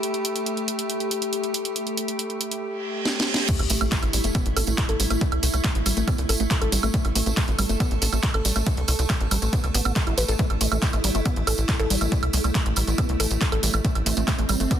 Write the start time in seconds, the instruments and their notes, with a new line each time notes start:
Already playing: ambient pad A3 G4, analog synth pad A4 E5 B5
0.03 closed hi-hat
0.14 closed hi-hat
0.25 closed hi-hat
0.36 closed hi-hat
0.46 closed hi-hat
0.57 closed hi-hat
0.68 closed hi-hat
0.79 closed hi-hat
0.90 closed hi-hat
1.00 closed hi-hat
1.11 closed hi-hat
1.22 closed hi-hat
1.33 closed hi-hat
1.44 closed hi-hat
1.54 closed hi-hat
1.65 closed hi-hat
1.76 closed hi-hat
1.87 closed hi-hat
1.97 closed hi-hat
2.08 closed hi-hat
2.19 closed hi-hat
2.30 closed hi-hat
2.41 closed hi-hat
2.51 closed hi-hat
2.62 reverse cymbal
3.05 snare
3.20 snare
3.34 snare
3.49 synth arpeggio sound A3, ambient pad A3 E4, kick, closed hi-hat, crash, tambourine, sub drop
3.59 analog synth bass A1, closed hi-hat, high woodblock
3.70 analog synth bass A1, synth arpeggio sound A3, open hi-hat, tambourine
3.81 analog synth bass A1, synth arpeggio sound A3, closed hi-hat, tambourine, high woodblock
3.92 synth arpeggio sound A3, kick, clap, closed hi-hat, tambourine
4.03 analog synth bass A1, closed hi-hat, high woodblock
4.13 analog synth bass A1, synth arpeggio sound G3, open hi-hat, tambourine
4.24 analog synth bass G1, synth arpeggio sound A3, closed hi-hat, tambourine
4.35 synth arpeggio sound B3, kick, closed hi-hat, tambourine, high woodblock
4.46 analog synth bass A1, closed hi-hat
4.57 analog synth bass A1, synth arpeggio sound A4, open hi-hat, tambourine, high woodblock
4.67 analog synth bass A1, synth arpeggio sound A3, closed hi-hat, tambourine
4.78 kick, clap, closed hi-hat, high woodblock
4.89 analog synth bass A1, synth arpeggio sound A4, closed hi-hat
5.00 analog synth bass A1, synth arpeggio sound G3, open hi-hat, tambourine
5.10 analog synth bass A1, synth arpeggio sound A3, closed hi-hat, tambourine, high woodblock
5.21 synth arpeggio sound A3, kick, closed hi-hat
5.32 analog synth bass C2, closed hi-hat, high woodblock
5.43 analog synth bass C2, synth arpeggio sound A3, open hi-hat, tambourine
5.53 analog synth bass C2, synth arpeggio sound A3, closed hi-hat, tambourine, high woodblock
5.64 synth arpeggio sound A3, kick, clap, closed hi-hat
5.75 analog synth bass A1, closed hi-hat
5.86 analog synth bass A1, synth arpeggio sound G3, open hi-hat, tambourine, high woodblock
5.97 analog synth bass A1, synth arpeggio sound A3, closed hi-hat, tambourine
6.08 synth arpeggio sound B3, kick, closed hi-hat, tambourine, high woodblock
6.18 analog synth bass C2, closed hi-hat
6.29 analog synth bass A1, synth arpeggio sound A4, open hi-hat, tambourine, high woodblock
6.40 analog synth bass A1, synth arpeggio sound A3, closed hi-hat, tambourine
6.51 kick, clap, closed hi-hat, tambourine
6.62 analog synth bass A1, synth arpeggio sound A4, closed hi-hat, high woodblock
6.72 analog synth bass A1, synth arpeggio sound G3, open hi-hat, tambourine
6.83 analog synth bass A1, synth arpeggio sound A3, closed hi-hat, tambourine, high woodblock
6.94 synth arpeggio sound A3, ambient pad A4, kick, closed hi-hat, tambourine
7.05 analog synth bass A1, closed hi-hat, high woodblock
7.15 analog synth bass A1, synth arpeggio sound A3, open hi-hat, tambourine
7.26 analog synth bass A1, synth arpeggio sound A3, closed hi-hat, tambourine
7.37 synth arpeggio sound A3, kick, clap, closed hi-hat, high woodblock
7.48 analog synth bass A1, closed hi-hat
7.58 analog synth bass A1, synth arpeggio sound G3, open hi-hat, tambourine, high woodblock
7.69 analog synth bass G1, synth arpeggio sound A3, closed hi-hat, tambourine
7.80 synth arpeggio sound B3, kick, closed hi-hat, tambourine, high woodblock
7.91 analog synth bass A1, closed hi-hat
8.02 analog synth bass A1, synth arpeggio sound A4, open hi-hat, tambourine
8.13 analog synth bass A1, synth arpeggio sound A3, closed hi-hat, tambourine, high woodblock
8.23 kick, clap, closed hi-hat, tambourine
8.34 analog synth bass A1, synth arpeggio sound A4, closed hi-hat, high woodblock
8.45 analog synth bass A1, synth arpeggio sound G3, open hi-hat, tambourine
8.56 analog synth bass A1, synth arpeggio sound A3, closed hi-hat, tambourine, high woodblock
8.67 synth arpeggio sound A3, kick, closed hi-hat
8.77 analog synth bass C2, closed hi-hat
8.88 analog synth bass C2, synth arpeggio sound A3, open hi-hat, tambourine, high woodblock
8.99 analog synth bass C2, synth arpeggio sound A3, closed hi-hat, tambourine
9.09 synth arpeggio sound A3, kick, clap, closed hi-hat, tambourine, high woodblock
9.21 analog synth bass A1, closed hi-hat
9.31 analog synth bass A1, synth arpeggio sound G3, open hi-hat, tambourine, high woodblock
9.42 analog synth bass A1, synth arpeggio sound A3, closed hi-hat, tambourine
9.53 synth arpeggio sound B3, kick, closed hi-hat, tambourine
9.64 analog synth bass C2, closed hi-hat, high woodblock
9.74 analog synth bass A1, synth arpeggio sound B3, open hi-hat, tambourine
9.85 analog synth bass A1, synth arpeggio sound B3, closed hi-hat, tambourine, high woodblock
9.96 synth arpeggio sound A3, kick, clap, closed hi-hat, tambourine
10.07 analog synth bass A1, synth arpeggio sound E4, closed hi-hat, high woodblock
10.17 analog synth bass A1, synth arpeggio sound B4, open hi-hat, tambourine
10.28 analog synth bass A1, synth arpeggio sound A4, closed hi-hat, tambourine
10.39 synth arpeggio sound A3, ambient pad E4, kick, closed hi-hat, tambourine
10.50 analog synth bass A1, closed hi-hat, high woodblock
10.61 analog synth bass A1, synth arpeggio sound A3, open hi-hat, tambourine
10.72 analog synth bass A1, synth arpeggio sound A3, closed hi-hat, tambourine, high woodblock
10.82 synth arpeggio sound A3, kick, clap, closed hi-hat, tambourine
10.93 analog synth bass A1, synth arpeggio sound A3, closed hi-hat, high woodblock
11.04 analog synth bass A1, synth arpeggio sound G3, open hi-hat, tambourine
11.15 analog synth bass G1, synth arpeggio sound A3, closed hi-hat, tambourine
11.25 synth arpeggio sound B3, kick, closed hi-hat, tambourine, high woodblock
11.36 analog synth bass A1, closed hi-hat
11.47 analog synth bass A1, synth arpeggio sound A4, open hi-hat, tambourine, high woodblock
11.58 analog synth bass A1, closed hi-hat, tambourine
11.69 kick, clap, closed hi-hat, tambourine, high woodblock
11.80 analog synth bass A1, synth arpeggio sound A4, closed hi-hat
11.90 analog synth bass A1, synth arpeggio sound G3, open hi-hat, tambourine
12.01 analog synth bass A1, synth arpeggio sound A3, closed hi-hat, tambourine, high woodblock
12.12 synth arpeggio sound A3, kick, closed hi-hat, tambourine
12.23 analog synth bass C2, closed hi-hat, high woodblock
12.33 analog synth bass C2, synth arpeggio sound A3, open hi-hat, tambourine
12.44 analog synth bass C2, synth arpeggio sound A3, closed hi-hat, tambourine, high woodblock
12.55 synth arpeggio sound A3, kick, clap, closed hi-hat, tambourine
12.66 analog synth bass A1, synth arpeggio sound A3, closed hi-hat
12.76 analog synth bass A1, synth arpeggio sound G3, open hi-hat, tambourine, high woodblock
12.87 analog synth bass A1, synth arpeggio sound A3, closed hi-hat, tambourine
12.98 synth arpeggio sound B3, kick, closed hi-hat, tambourine, high woodblock
13.09 analog synth bass C2, closed hi-hat
13.20 analog synth bass A1, synth arpeggio sound A4, open hi-hat, tambourine, high woodblock
13.30 analog synth bass A1, closed hi-hat, tambourine
13.41 kick, clap, closed hi-hat, tambourine
13.52 analog synth bass A1, synth arpeggio sound A4, closed hi-hat, high woodblock
13.63 analog synth bass A1, synth arpeggio sound G3, open hi-hat, tambourine
13.73 analog synth bass A1, synth arpeggio sound A3, closed hi-hat, tambourine, high woodblock
13.85 synth arpeggio sound A3, ambient pad C4, kick, closed hi-hat, tambourine
13.95 analog synth bass A1, closed hi-hat, high woodblock
14.06 analog synth bass A1, synth arpeggio sound A3, open hi-hat, tambourine
14.17 analog synth bass A1, synth arpeggio sound A3, closed hi-hat, tambourine
14.28 synth arpeggio sound A3, kick, clap, closed hi-hat, tambourine, high woodblock
14.39 analog synth bass A1, synth arpeggio sound A3, closed hi-hat
14.49 analog synth bass A1, synth arpeggio sound G3, open hi-hat, tambourine, high woodblock
14.60 analog synth bass G1, synth arpeggio sound A3, closed hi-hat, tambourine
14.71 synth arpeggio sound B3, kick, closed hi-hat, tambourine, high woodblock